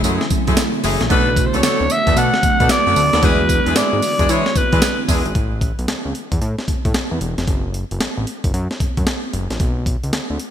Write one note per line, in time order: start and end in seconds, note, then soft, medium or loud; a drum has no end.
0.00 1.06 C#3 medium
0.00 1.08 E3 medium
0.00 3.19 F#3 medium
0.00 1.06 A3 medium
0.00 0.24 A3 medium
0.00 1.06 C#4 medium
0.00 1.06 E4 medium
0.00 1.07 E4 medium
0.00 0.24 E4 medium
0.00 1.07 G#5 medium
0.00 tambourine medium
0.04 0.19 F#2 loud
0.04 0.24 G#3 medium
0.04 0.24 G#4 medium
0.04 closed hi-hat medium
0.21 snare medium
0.30 0.38 F#2 soft
0.30 kick medium
0.30 closed hi-hat medium
0.30 tambourine medium
0.47 0.56 F#2 medium
0.47 0.62 G#3 medium
0.47 0.62 A3 medium
0.47 0.62 E4 medium
0.47 0.62 G#4 medium
0.47 kick medium
0.47 closed hi-hat medium
0.57 snare loud
0.57 closed hi-hat medium
0.57 tambourine loud
0.83 0.98 F#1 medium
0.83 1.03 G#3 medium
0.83 1.03 A3 medium
0.83 1.03 E4 medium
0.83 1.03 G#4 medium
0.83 open hi-hat medium
0.83 tambourine medium
1.01 1.09 A#1 medium
1.01 snare medium
1.01 closed hi-hat soft
1.10 1.47 B1 loud
1.10 3.21 D3 medium
1.10 3.18 A3 medium
1.10 3.21 A3 medium
1.10 1.30 A3 loud
1.10 1.30 B3 loud
1.10 3.19 B3 medium
1.10 5.31 B3 medium
1.10 1.30 D4 medium
1.10 3.19 D4 medium
1.10 3.21 F#4 medium
1.10 3.20 F#4 medium
1.10 1.30 A4 loud
1.10 1.48 B4 loud
1.10 kick loud
1.10 closed hi-hat medium
1.37 kick loud
1.37 closed hi-hat medium
1.37 tambourine medium
1.46 1.57 C5 medium
1.53 1.62 C#2 medium
1.53 1.62 A3 medium
1.53 1.62 B3 medium
1.53 1.62 D4 medium
1.53 1.62 A4 medium
1.53 1.93 C#5 loud
1.53 closed hi-hat medium
1.63 1.70 D2 soft
1.63 1.83 A3 medium
1.63 1.83 B3 medium
1.63 1.83 D4 medium
1.63 1.83 A4 medium
1.63 snare loud
1.63 closed hi-hat medium
1.63 tambourine medium
1.80 1.88 D2 loud
1.90 2.19 E5 loud
1.90 closed hi-hat medium
1.90 tambourine medium
2.07 2.15 E2 medium
2.07 2.16 A3 medium
2.07 2.15 B3 medium
2.07 2.15 D4 medium
2.07 2.16 A4 medium
2.07 kick medium
2.07 closed hi-hat medium
2.16 2.31 B2 loud
2.16 2.36 A3 medium
2.16 2.36 B3 medium
2.16 2.36 D4 medium
2.16 2.36 A4 loud
2.16 2.73 F#5 loud
2.16 closed hi-hat medium
2.16 tambourine medium
2.34 snare medium
2.43 2.50 B2 soft
2.43 kick loud
2.43 closed hi-hat medium
2.43 tambourine medium
2.60 2.68 B2 loud
2.60 2.74 A3 medium
2.60 2.74 B3 medium
2.60 2.74 D4 medium
2.60 2.74 A4 medium
2.60 kick medium
2.60 closed hi-hat medium
2.69 3.25 D5 loud
2.69 snare loud
2.69 closed hi-hat medium
2.69 tambourine loud
2.86 2.95 F#2 medium
2.86 3.01 A3 medium
2.86 3.01 B3 medium
2.86 3.01 D4 medium
2.86 3.01 A4 medium
2.96 3.11 D2 loud
2.96 open hi-hat medium
2.96 tambourine medium
3.13 3.21 D#2 loud
3.13 3.27 A3 medium
3.13 3.27 B3 medium
3.13 3.21 D4 medium
3.13 3.27 A4 medium
3.13 snare medium
3.13 closed hi-hat medium
3.22 3.60 E2 loud
3.22 5.33 D3 medium
3.22 5.33 E3 medium
3.22 5.31 G#3 medium
3.22 5.33 G#3 medium
3.22 3.42 G#3 loud
3.22 5.31 B3 medium
3.22 3.42 D4 loud
3.22 5.32 D4 medium
3.22 3.42 E4 medium
3.22 5.33 E4 medium
3.22 5.32 F#4 medium
3.22 3.42 G#4 loud
3.22 3.79 B4 loud
3.22 kick loud
3.22 closed hi-hat medium
3.49 kick medium
3.49 closed hi-hat medium
3.49 tambourine medium
3.66 3.74 E2 medium
3.66 3.75 G#3 medium
3.66 3.74 D4 medium
3.66 3.74 E4 medium
3.66 3.75 G#4 medium
3.66 closed hi-hat medium
3.75 3.83 G#2 medium
3.75 3.96 G#3 medium
3.75 3.95 D4 medium
3.75 3.95 E4 medium
3.75 3.96 G#4 medium
3.75 4.32 D5 medium
3.75 snare loud
3.75 closed hi-hat medium
3.75 tambourine medium
3.93 4.01 G#2 medium
4.02 open hi-hat medium
4.02 tambourine medium
4.19 4.27 E2 medium
4.19 4.28 G#3 medium
4.19 4.27 D4 medium
4.19 4.28 E4 medium
4.19 4.28 G#4 medium
4.19 kick medium
4.19 closed hi-hat medium
4.29 4.43 E3 loud
4.29 4.49 G#3 medium
4.29 4.48 D4 medium
4.29 4.49 E4 medium
4.29 4.49 G#4 medium
4.29 4.58 C#5 medium
4.29 closed hi-hat medium
4.29 tambourine medium
4.46 snare medium
4.55 4.62 E3 soft
4.55 5.09 B4 medium
4.55 kick medium
4.55 closed hi-hat medium
4.55 tambourine medium
4.72 4.81 E3 loud
4.72 4.87 G#3 medium
4.72 4.87 D4 medium
4.72 4.87 E4 medium
4.72 4.87 G#4 medium
4.72 kick medium
4.72 closed hi-hat medium
4.82 snare loud
4.82 closed hi-hat medium
4.82 tambourine loud
5.08 5.23 E2 loud
5.08 5.28 G#3 medium
5.08 5.28 D4 medium
5.08 5.28 E4 medium
5.08 5.28 G#4 medium
5.08 kick loud
5.08 open hi-hat medium
5.08 tambourine medium
5.26 5.34 G#1 medium
5.26 closed hi-hat soft
5.35 5.72 A1 loud
5.35 kick loud
5.35 closed hi-hat medium
5.61 kick medium
5.61 closed hi-hat medium
5.79 5.87 B1 medium
5.79 closed hi-hat medium
5.88 snare loud
5.88 closed hi-hat medium
6.05 6.13 C#2 medium
6.15 closed hi-hat medium
6.32 6.40 E2 medium
6.32 kick medium
6.32 closed hi-hat medium
6.41 6.56 A2 loud
6.41 closed hi-hat medium
6.59 snare medium
6.68 6.75 A2 soft
6.68 kick medium
6.68 closed hi-hat medium
6.85 6.93 A2 medium
6.85 kick medium
6.85 closed hi-hat soft
6.94 snare loud
6.94 closed hi-hat medium
7.11 7.19 E2 medium
7.21 7.35 E1 medium
7.21 closed hi-hat medium
7.38 7.46 F1 medium
7.38 snare medium
7.38 closed hi-hat soft
7.48 7.84 F#1 loud
7.48 kick loud
7.48 closed hi-hat medium
7.74 closed hi-hat medium
7.91 7.99 F#1 medium
7.91 closed hi-hat medium
8.01 8.08 A1 soft
8.01 snare loud
8.01 closed hi-hat medium
8.17 8.26 A1 medium
8.27 closed hi-hat medium
8.44 8.52 F#1 medium
8.44 kick medium
8.44 closed hi-hat medium
8.54 8.68 F#2 loud
8.54 closed hi-hat medium
8.71 snare medium
8.80 8.87 F#2 soft
8.80 kick medium
8.80 closed hi-hat medium
8.97 9.05 F#2 medium
8.97 kick medium
8.97 closed hi-hat medium
9.07 snare loud
9.07 closed hi-hat medium
9.33 9.48 F#1 medium
9.33 closed hi-hat medium
9.50 9.58 A#1 medium
9.50 snare medium
9.50 closed hi-hat soft
9.60 9.97 B1 loud
9.60 kick loud
9.60 closed hi-hat medium
9.86 kick medium
9.86 closed hi-hat medium
10.04 10.12 C#2 medium
10.04 closed hi-hat medium
10.13 snare loud
10.13 closed hi-hat medium
10.30 10.38 D2 medium
10.39 closed hi-hat medium